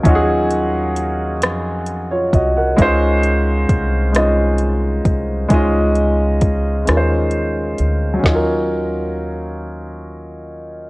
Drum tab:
HH |xxxxxx|xxxxxx|xxxxxx|------|
SD |---r--|---r--|---r--|o-----|
BD |o----o|o-o--o|o-o---|o-----|